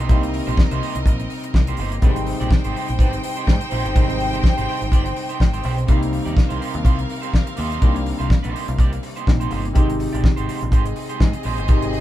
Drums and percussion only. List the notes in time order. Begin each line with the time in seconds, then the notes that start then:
0.09 kick, closed hi-hat
0.23 closed hi-hat
0.34 open hi-hat
0.49 closed hi-hat
0.57 kick, snare
0.71 closed hi-hat
0.83 open hi-hat
0.95 closed hi-hat
1.06 kick, closed hi-hat
1.20 closed hi-hat
1.30 open hi-hat
1.44 closed hi-hat
1.54 kick, snare
1.67 closed hi-hat
1.77 open hi-hat
1.92 closed hi-hat
2.02 kick, closed hi-hat
2.16 closed hi-hat
2.27 open hi-hat
2.41 closed hi-hat
2.51 kick, snare
2.64 closed hi-hat
2.76 open hi-hat
2.88 closed hi-hat
2.99 kick, closed hi-hat
3.13 closed hi-hat
3.24 open hi-hat
3.37 closed hi-hat
3.47 kick, snare
3.61 closed hi-hat
3.71 open hi-hat
3.86 closed hi-hat
3.96 kick, closed hi-hat
4.10 closed hi-hat
4.20 open hi-hat
4.35 closed hi-hat
4.44 kick, snare
4.58 closed hi-hat
4.69 open hi-hat
4.81 closed hi-hat
4.92 kick, closed hi-hat
5.06 closed hi-hat
5.16 open hi-hat
5.30 closed hi-hat
5.40 kick, snare
5.54 closed hi-hat
5.63 open hi-hat
5.78 closed hi-hat
5.88 kick, closed hi-hat
6.03 closed hi-hat
6.13 open hi-hat
6.27 closed hi-hat
6.37 kick, snare
6.50 closed hi-hat
6.62 open hi-hat
6.74 closed hi-hat
6.85 kick, closed hi-hat
6.99 closed hi-hat
7.10 open hi-hat
7.23 closed hi-hat
7.34 kick, snare
7.47 closed hi-hat
7.57 open hi-hat
7.72 closed hi-hat
7.82 kick, closed hi-hat
7.96 closed hi-hat
8.06 open hi-hat
8.21 closed hi-hat
8.30 kick, snare
8.44 closed hi-hat
8.56 open hi-hat
8.68 closed hi-hat
8.79 kick, closed hi-hat
8.93 closed hi-hat
9.03 open hi-hat
9.17 closed hi-hat
9.27 kick, snare
9.41 closed hi-hat
9.51 open hi-hat
9.66 closed hi-hat
9.75 kick, closed hi-hat
9.90 closed hi-hat
10.00 open hi-hat
10.15 closed hi-hat
10.24 kick, snare
10.37 closed hi-hat
10.49 open hi-hat
10.61 closed hi-hat
10.72 kick, closed hi-hat
10.85 closed hi-hat
10.96 open hi-hat
11.09 closed hi-hat
11.20 kick, snare
11.33 closed hi-hat
11.43 open hi-hat
11.58 closed hi-hat
11.68 kick, closed hi-hat
11.82 closed hi-hat
11.93 open hi-hat